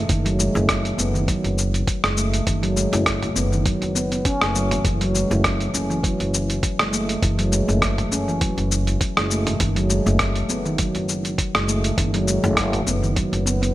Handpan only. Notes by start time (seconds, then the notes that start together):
0.09 D#3
0.25 F#3
0.39 G#3
0.55 A3
0.98 B3
1.14 D#3
1.28 F#3
2.04 G#3
2.17 A3
2.47 D#3
2.63 F#3
2.76 G#3
2.93 A3
3.36 B3
3.52 D#3
3.66 F#3
3.95 B3
4.12 B3
4.25 C#4
4.42 A3
4.56 F#3
4.85 E3
5.01 F#3
5.15 G#3
5.31 A3
5.74 C#4
5.90 E3
6.03 F#3
6.79 G#3
6.93 A3
7.23 E3
7.39 F#3
7.52 G#3
7.68 A3
8.12 C#4
8.28 E3
8.41 F#3
9.17 G#3
9.30 A3
9.60 D#3
9.76 F#3
9.90 G#3
10.06 A3
10.49 B3
10.66 D#3
10.79 F#3
11.55 G#3
11.68 A3
11.98 D#3
12.14 F#3
12.28 G#3
12.44 A3
12.87 B3
13.03 D#3
13.16 F#3
13.46 B3
13.62 B3